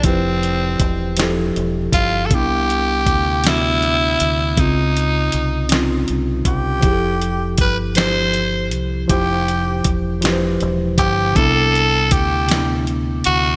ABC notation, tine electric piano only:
X:1
M:6/8
L:1/8
Q:3/8=53
K:Flyd
V:1 name="Tine electric piano"
[F,EGB]2 z [F,EGA]2 z | [C,B,DE]2 z [C,B,D_G]2 z | [_D,C_EF]2 z [C_DEF]2 z | [F,EG_A=A]2 z [F,EGc]2 z |
[F,EGc]2 z [F,EGBc]2 z | [C,B,DE]2 z [C,B,DE]2 z |]